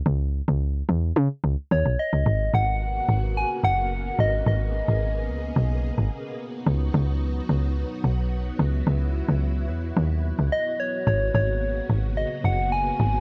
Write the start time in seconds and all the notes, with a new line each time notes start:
0.06 C#2
0.48 C#2
0.89 E2
1.16 C#3
1.44 C#2
1.71 D#2 C#5
1.85 B1
1.99 D#5
2.13 C#2
2.26 G#1 C#3 A#3 B3 F#4
2.54 G#1 F#5
3.09 G#1
3.37 G#5
3.64 F#1 F#5
4.19 G#1 D#5
4.46 G#1 G#4 D#5
4.88 G#1
5.29 C#2
5.56 B1
5.98 G#1
6.39 F#3 D#4 F#4
6.67 C#2
6.94 C#2
7.49 C#2
8.04 B1
8.59 C#2 E4
8.87 C#2
9.29 C#2
9.69 E2
9.97 D#2
10.39 C#2
10.52 D#5
10.80 C#5
11.07 G#1 C#3 A#3 B3 C#5
11.34 G#1 C#5
11.90 G#1
12.17 D#5
12.44 F#1 F#5
12.72 G#5
13.00 G#1